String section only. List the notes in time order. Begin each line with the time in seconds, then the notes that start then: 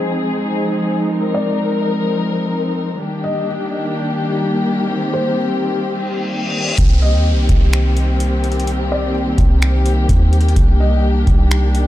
Already playing: F3 G#3 C4 D#4 G#4
1.11 A#4
3.00 D#3 G3 A#3 D4 G4
4.90 C4
6.78 D#3 G3 A#3 C4 G4
10.56 D4